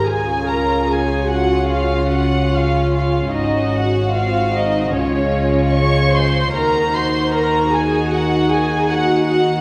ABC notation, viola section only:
X:1
M:4/4
L:1/8
Q:1/4=75
K:Db
V:1 name="Viola section"
A B A G F G F F | E G F E D2 d c | B c B A G A G G |]